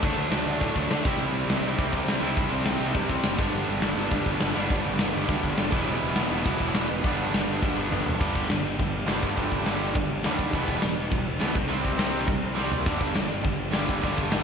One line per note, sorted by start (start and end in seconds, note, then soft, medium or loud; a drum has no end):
0.02 0.14 D2 loud
0.02 0.74 D3 medium
0.02 0.59 D3 medium
0.02 0.60 F#3 medium
0.02 0.75 A3 loud
0.02 0.60 A3 medium
0.02 0.73 D4 loud
0.02 0.61 D4 loud
0.02 kick loud
0.02 crash medium
0.16 0.28 D2 loud
0.31 0.43 D2 medium
0.31 snare loud
0.31 crash medium
0.46 0.58 D2 medium
0.60 0.73 A2 loud
0.60 1.04 D3 medium
0.60 1.04 F#3 medium
0.60 1.04 A3 medium
0.60 1.05 D4 medium
0.60 kick loud
0.60 crash medium
0.75 0.87 D2 medium
0.75 0.88 D3 medium
0.75 0.90 A3 medium
0.75 0.89 D4 medium
0.75 kick medium
0.88 1.00 D2 loud
0.88 1.04 D3 medium
0.88 1.05 A3 medium
0.88 1.05 D4 medium
0.88 snare loud
0.88 crash medium
1.04 1.16 C2 medium
1.04 1.62 C3 loud
1.04 1.77 C3 loud
1.04 1.64 G3 loud
1.04 1.79 G3 loud
1.04 1.62 C4 loud
1.04 1.79 C4 loud
1.04 1.61 E4 loud
1.04 kick loud
1.17 1.29 C2 loud
1.17 crash medium
1.33 1.45 C2 loud
1.45 1.58 C2 loud
1.50 snare loud
1.50 crash medium
1.61 1.73 C2 medium
1.61 2.22 G3 medium
1.61 2.21 C4 medium
1.61 2.21 E4 medium
1.65 2.21 C3 medium
1.78 1.90 C2 loud
1.78 1.92 C3 medium
1.78 1.94 G3 medium
1.78 1.92 C4 loud
1.78 kick loud
1.78 crash medium
1.93 2.04 C2 loud
1.93 2.21 C3 medium
1.93 2.22 G3 medium
1.93 2.21 C4 medium
1.93 kick medium
2.05 2.17 C2 medium
2.05 snare loud
2.05 crash medium
2.21 2.33 C2 medium
2.21 2.94 C3 loud
2.21 2.80 C3 loud
2.21 2.80 G3 medium
2.21 2.95 G3 loud
2.21 2.79 C4 loud
2.21 2.95 C4 loud
2.21 2.78 E4 loud
2.37 2.48 C2 loud
2.37 kick loud
2.37 crash medium
2.51 2.63 C2 medium
2.65 2.76 C2 loud
2.65 snare loud
2.65 crash medium
2.80 2.92 C2 medium
2.80 3.39 C3 medium
2.80 3.39 G3 medium
2.80 3.38 C4 medium
2.80 3.38 E4 loud
2.94 3.06 G2 loud
2.94 3.09 C3 medium
2.94 3.09 G3 medium
2.94 3.08 C4 medium
2.94 kick loud
2.94 crash medium
3.09 3.21 C2 medium
3.09 3.38 C3 medium
3.09 3.39 G3 medium
3.09 3.38 C4 medium
3.09 kick medium
3.24 3.39 F#1 medium
3.24 snare loud
3.24 crash medium
3.38 3.50 G1 medium
3.38 4.09 G2 medium
3.38 3.96 G2 loud
3.38 4.10 D3 loud
3.38 3.97 D3 medium
3.38 4.12 G3 loud
3.38 3.97 G3 medium
3.38 3.96 B3 medium
3.38 3.95 D4 loud
3.38 kick loud
3.52 3.65 G1 loud
3.52 crash medium
3.69 3.80 G1 medium
3.82 3.94 G1 medium
3.82 snare loud
3.82 crash medium
3.96 4.08 G1 medium
3.96 4.53 G2 medium
3.96 4.53 D3 medium
3.96 4.54 G3 medium
3.96 4.55 B3 medium
3.96 4.54 D4 medium
4.10 4.23 G1 loud
4.10 4.25 G2 medium
4.10 4.25 D3 medium
4.10 4.25 G3 medium
4.10 kick loud
4.10 crash medium
4.26 4.37 G1 medium
4.26 4.53 G2 medium
4.26 4.54 D3 medium
4.26 4.56 G3 medium
4.26 kick medium
4.40 4.53 G1 medium
4.40 snare loud
4.40 crash medium
4.54 4.68 G1 medium
4.54 5.12 G2 medium
4.54 5.27 G2 medium
4.54 5.13 D3 loud
4.54 5.28 D3 loud
4.54 5.14 G3 loud
4.54 5.30 G3 loud
4.54 5.13 B3 loud
4.54 5.12 D4 loud
4.70 4.82 G1 loud
4.70 kick loud
4.70 crash medium
4.86 4.97 G1 medium
4.99 5.12 G1 loud
4.99 snare loud
4.99 crash medium
5.13 5.26 G1 medium
5.13 5.72 G2 medium
5.13 5.71 D3 medium
5.13 5.73 G3 medium
5.13 5.73 B3 medium
5.13 5.71 D4 medium
5.28 5.40 D2 loud
5.28 5.42 G2 medium
5.28 5.43 D3 medium
5.28 5.42 G3 medium
5.28 kick loud
5.28 crash medium
5.42 5.55 G1 medium
5.42 5.72 G2 medium
5.42 5.72 D3 medium
5.42 5.74 G3 medium
5.42 kick medium
5.58 5.71 F#1 loud
5.58 snare loud
5.58 crash medium
5.71 5.84 E1 loud
5.71 6.43 E2 loud
5.71 6.45 B2 loud
5.71 6.30 E3 medium
5.71 6.46 E3 loud
5.71 6.31 G3 loud
5.71 6.30 B3 loud
5.71 6.28 E4 loud
5.71 kick loud
5.71 crash loud
5.87 5.99 E1 loud
5.87 crash medium
6.04 6.14 E1 medium
6.16 6.28 E1 loud
6.16 snare loud
6.16 crash medium
6.30 6.42 E1 medium
6.30 6.89 E3 medium
6.30 7.04 G3 medium
6.30 7.04 B3 medium
6.30 6.88 E4 medium
6.45 6.57 E1 loud
6.45 6.59 E2 medium
6.45 6.59 B2 medium
6.45 6.58 E3 loud
6.45 kick loud
6.45 crash medium
6.60 6.72 E1 loud
6.60 6.89 E2 medium
6.60 6.89 B2 medium
6.60 6.88 E3 medium
6.60 kick medium
6.75 6.86 E1 medium
6.75 snare loud
6.75 crash medium
6.92 7.02 E1 loud
7.02 7.15 G1 loud
7.02 7.75 G2 medium
7.02 7.60 G2 medium
7.02 7.60 D3 loud
7.02 7.75 D3 medium
7.02 7.61 G3 loud
7.02 7.74 G3 loud
7.02 7.62 B3 medium
7.02 7.62 D4 loud
7.02 kick loud
7.02 crash medium
7.19 7.30 G1 medium
7.34 7.45 G1 medium
7.34 snare loud
7.34 crash medium
7.48 7.59 G1 medium
7.61 7.74 D2 loud
7.61 8.18 G2 medium
7.61 8.18 D3 medium
7.61 8.18 G3 medium
7.61 8.19 B3 medium
7.61 8.19 D4 medium
7.61 kick loud
7.61 snare medium
7.76 7.88 G1 loud
7.76 7.89 G2 medium
7.76 7.90 D3 medium
7.76 7.90 G3 medium
7.90 8.03 G1 loud
7.90 8.18 G2 medium
7.90 8.19 D3 medium
7.90 8.19 G3 medium
7.90 mid tom loud
8.05 8.16 E1 medium
8.05 floor tom medium
8.19 8.34 G1 loud
8.19 9.35 G2 medium
8.19 8.48 G2 medium
8.19 9.36 D3 medium
8.19 8.49 D3 medium
8.19 9.37 G3 medium
8.19 8.49 G3 loud
8.19 9.38 B3 medium
8.19 9.36 D4 medium
8.19 9.38 G4 loud
8.19 kick loud
8.19 crash loud
8.19 crash medium
8.35 8.48 G1 medium
8.35 kick medium
8.48 8.61 G1 medium
8.48 8.63 G2 medium
8.48 8.63 D3 medium
8.48 snare loud
8.48 crash medium
8.62 8.77 G1 medium
8.79 9.07 G1 medium
8.79 8.92 G2 medium
8.79 8.92 D3 medium
8.79 kick loud
8.79 crash medium
9.08 9.22 G1 medium
9.08 9.34 G2 medium
9.08 9.35 D3 loud
9.08 9.35 G3 loud
9.08 snare loud
9.08 crash medium
9.23 9.37 G1 medium
9.23 kick medium
9.35 9.65 G1 medium
9.35 9.64 G2 medium
9.35 10.53 G2 medium
9.35 9.64 D3 loud
9.35 10.53 D3 loud
9.35 9.64 G3 loud
9.35 10.54 G3 medium
9.35 10.53 B3 medium
9.35 10.54 D4 medium
9.35 12.89 G4 loud
9.35 kick loud
9.35 crash medium
9.52 kick medium
9.65 9.94 G1 medium
9.65 9.94 G2 loud
9.65 9.94 D3 loud
9.65 9.94 G3 loud
9.65 snare loud
9.65 crash medium
9.94 10.09 G1 loud
9.94 10.09 G2 medium
9.94 10.09 D3 loud
9.94 kick loud
9.94 crash medium
10.11 10.24 G1 medium
10.24 10.52 D#2 loud
10.24 10.52 G2 medium
10.24 10.53 D3 loud
10.24 10.52 G3 loud
10.24 snare loud
10.24 crash medium
10.39 kick medium
10.52 10.68 E1 loud
10.52 10.81 E2 medium
10.52 10.81 B2 medium
10.52 10.81 E3 loud
10.52 11.54 E3 medium
10.52 11.54 G3 medium
10.52 11.56 B3 medium
10.52 11.56 E4 medium
10.52 kick loud
10.52 crash medium
10.68 10.82 E1 medium
10.68 kick medium
10.82 10.96 E1 medium
10.82 10.96 E2 medium
10.82 10.96 B2 medium
10.82 10.96 E3 medium
10.82 10.96 G3 medium
10.82 snare loud
10.82 crash medium
10.97 11.11 E1 medium
11.11 11.39 E1 loud
11.11 11.24 E2 medium
11.11 11.25 B2 loud
11.11 11.25 E3 medium
11.11 11.25 G3 loud
11.11 kick loud
11.11 crash medium
11.39 11.54 D2 medium
11.39 11.55 E2 medium
11.39 11.55 B2 loud
11.39 11.55 E3 medium
11.39 11.54 G3 medium
11.39 11.55 B3 loud
11.39 snare loud
11.39 crash medium
11.54 11.69 C2 medium
11.54 12.71 C3 loud
11.54 12.85 G3 loud
11.54 12.72 C4 loud
11.54 12.72 E4 loud
11.54 kick loud
11.69 11.97 C2 medium
11.69 11.98 C3 medium
11.69 11.98 G3 medium
11.69 11.98 C4 loud
11.69 crash medium
11.85 kick medium
11.98 12.26 C2 medium
11.98 12.27 C3 medium
11.98 12.27 G3 medium
11.98 12.28 C4 medium
11.98 snare loud
11.98 crash medium
12.28 12.42 C2 medium
12.28 12.42 C3 medium
12.28 12.42 G3 medium
12.28 kick loud
12.28 crash medium
12.43 12.57 C2 medium
12.56 12.85 C2 medium
12.56 12.86 C3 loud
12.56 12.86 G3 loud
12.56 12.86 C4 loud
12.56 snare medium
12.72 floor tom medium
12.85 13.00 G1 loud
12.85 14.02 G2 medium
12.85 13.14 G2 medium
12.85 14.03 D3 medium
12.85 13.14 D3 medium
12.85 14.04 G3 medium
12.85 13.15 G3 loud
12.85 14.04 B3 medium
12.85 14.03 D4 medium
12.85 kick loud
12.85 crash medium
13.01 13.15 G1 medium
13.01 kick medium
13.15 13.30 G1 loud
13.15 13.29 G2 medium
13.15 13.29 D3 medium
13.15 snare loud
13.15 crash medium
13.30 13.44 G1 medium
13.43 13.72 G1 loud
13.43 13.58 G2 medium
13.43 13.58 D3 medium
13.43 kick loud
13.43 crash medium
13.73 13.88 G1 loud
13.73 14.02 G2 medium
13.73 14.02 D3 medium
13.73 14.03 G3 loud
13.73 snare loud
13.73 crash medium
13.89 14.03 G1 medium
13.89 kick medium
14.03 14.31 G1 medium
14.03 14.43 G2 medium
14.03 14.31 G2 medium
14.03 14.31 D3 loud
14.03 14.43 D3 medium
14.03 14.32 G3 loud
14.03 14.43 G3 medium
14.03 14.43 B3 loud
14.03 14.43 D4 loud
14.03 kick medium
14.03 crash medium
14.18 kick medium
14.32 14.43 G1 loud
14.32 14.43 G2 medium
14.32 14.43 D3 loud
14.32 14.43 G3 loud
14.32 snare loud
14.32 crash medium